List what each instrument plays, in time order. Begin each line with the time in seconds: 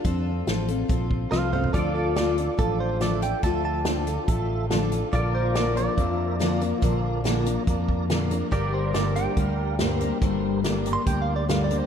Already playing: clean electric guitar D4
0.04 fingered electric bass F2, steel-string acoustic guitar F3 C4 F4 A4, kick, closed hi-hat
0.47 fingered electric bass A1, steel-string acoustic guitar F3 C4 F4 A4, snare, closed hi-hat
0.68 steel-string acoustic guitar C4 F4 A4, closed hi-hat
0.88 fingered electric bass A#1, steel-string acoustic guitar F3 C4 F4 A4, kick, closed hi-hat
1.11 kick
1.31 fingered electric bass C2, steel-string acoustic guitar F3 C4 F4 A4, clean electric guitar C5 F5, snare
1.52 steel-string acoustic guitar C4 F4 A4, clean electric guitar C5 F5, mid tom
1.64 floor tom
1.73 fingered electric bass D2, steel-string acoustic guitar D3 F3 D4 F4 A4, tonewheel organ F4 A4 D5, pedal steel guitar F4 A4 D5, clean electric guitar A4 D5, kick, closed hi-hat
1.94 clean electric guitar A4 D5
2.16 steel-string acoustic guitar D3 F3 D4 F4 A4, tonewheel organ F4 A4 D5, clean electric guitar D5, snare, closed hi-hat
2.37 steel-string acoustic guitar D4 F4 A4, closed hi-hat
2.57 fingered electric bass A1, steel-string acoustic guitar F3 D4 F4 A4, tonewheel organ F4 A4 D5, clean electric guitar A4, kick, closed hi-hat
2.80 clean electric guitar C5
3.00 steel-string acoustic guitar D3 F3 D4 F4 A4, tonewheel organ F4 A4 E5, clean electric guitar D5, snare, closed hi-hat
3.22 steel-string acoustic guitar D4 F4 A4, clean electric guitar G5, closed hi-hat
3.43 fingered electric bass D2, steel-string acoustic guitar D3 F3 D4 F4 A4, tonewheel organ F4 A4 E5, clean electric guitar A5, kick, closed hi-hat
3.65 clean electric guitar A5
3.85 steel-string acoustic guitar D3 F3 D4 F4 A4, tonewheel organ F4 A4 D5, snare, closed hi-hat
4.07 steel-string acoustic guitar D4 F4 A4, closed hi-hat
4.28 fingered electric bass A1, steel-string acoustic guitar F3 D4 F4 A4, tonewheel organ F4 A4 E5, kick, closed hi-hat
4.70 steel-string acoustic guitar D3 F3 D4 F4 A4, tonewheel organ F4 A4 D5, snare, closed hi-hat
4.92 steel-string acoustic guitar D4 F4 A4, closed hi-hat
5.12 fingered electric bass A#1, steel-string acoustic guitar A#2 D3 F3 A#3 D4 A#4, tonewheel organ F4 A#4 D5, pedal steel guitar F4 A4 D5, clean electric guitar D5, kick, closed hi-hat
5.34 pedal steel guitar A#4, clean electric guitar C5
5.55 steel-string acoustic guitar A#2 D3 F3 A#3 D4 A#4, tonewheel organ F4 A#4 C5, clean electric guitar D5, snare, closed hi-hat
5.77 steel-string acoustic guitar F3 A#3 D4 A#4, clean electric guitar D5, closed hi-hat
5.97 fingered electric bass F2, steel-string acoustic guitar F3 A#3 D4 A#4, tonewheel organ F4 A#4 E5, kick, closed hi-hat
6.39 steel-string acoustic guitar A#2 D3 F3 A#3 D4 A#4, tonewheel organ F4 A#4 D5, snare, closed hi-hat
6.60 steel-string acoustic guitar F3 A#3 D4 A#4, closed hi-hat
6.82 fingered electric bass A#1, steel-string acoustic guitar A#2 D3 F3 A#3 D4 A#4, tonewheel organ F4 A#4 D5, kick, closed hi-hat
7.24 steel-string acoustic guitar A#2 D3 F3 A#3 D4 A#4, tonewheel organ F4 A#4 D5, snare, closed hi-hat
7.45 steel-string acoustic guitar F3 A#3 D4 A#4, closed hi-hat
7.67 fingered electric bass F2, steel-string acoustic guitar F3 A#3 D4 A#4, tonewheel organ F4 A#4 D5, kick, closed hi-hat
7.89 kick
8.10 steel-string acoustic guitar A#2 D3 F3 A#3 D4 A#4, tonewheel organ F4 A#4 D5, snare, closed hi-hat
8.30 steel-string acoustic guitar F3 A#3 D4 A#4, closed hi-hat
8.52 fingered electric bass G1, steel-string acoustic guitar G2 D3 G3 A#3 D4 A#4, tonewheel organ G4 A#4 D5, pedal steel guitar G4 A#4 D5, clean electric guitar D5, kick, closed hi-hat
8.74 clean electric guitar C5
8.94 steel-string acoustic guitar G2 D3 G3 A#3 D4 A#4, tonewheel organ G4 A#4 C5, clean electric guitar D5, snare, closed hi-hat
9.16 steel-string acoustic guitar G3 A#3 D4 A#4, clean electric guitar G5, closed hi-hat
9.37 fingered electric bass D2, steel-string acoustic guitar G3 A#3 D4 A#4, tonewheel organ G4 A#4 F5, kick, closed hi-hat
9.79 steel-string acoustic guitar G2 D3 G3 A#3 D4 A#4, tonewheel organ G4 A#4 C5, snare, closed hi-hat
10.01 steel-string acoustic guitar G3 A#3 D4 A#4, closed hi-hat
10.22 fingered electric bass G1, steel-string acoustic guitar G2 D3 G3 A#3 D4 A#4, tonewheel organ G4 A#4 C5, kick, closed hi-hat
10.64 steel-string acoustic guitar G2 D3 G3 A#3 D4 A#4, tonewheel organ G4 A#4 D5, snare, closed hi-hat
10.85 steel-string acoustic guitar G3 A#3 D4 A#4, closed hi-hat
10.93 clean electric guitar C6
11.06 fingered electric bass D2, steel-string acoustic guitar G3 A#3 D4 A#4, tonewheel organ G4 A#4 D5, clean electric guitar G5, kick, closed hi-hat
11.22 clean electric guitar F5
11.36 clean electric guitar D5
11.48 steel-string acoustic guitar G2 D3 G3 A#3 D4 A#4, tonewheel organ G4 A#4 D5, clean electric guitar F5, snare, closed hi-hat
11.64 clean electric guitar D5
11.70 steel-string acoustic guitar G3 A#3 D4 A#4, closed hi-hat
11.78 clean electric guitar C5